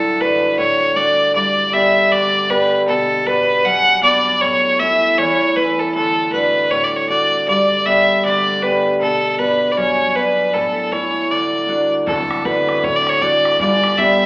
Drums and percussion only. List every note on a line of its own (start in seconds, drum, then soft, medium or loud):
12.07 bodhran medium
12.19 bodhran soft
12.31 bodhran medium
12.45 bodhran medium
12.69 bodhran medium
12.84 bodhran medium
13.07 bodhran medium
13.22 bodhran medium
13.45 bodhran medium
13.60 bodhran medium
13.72 bodhran soft
13.84 bodhran medium
13.98 bodhran medium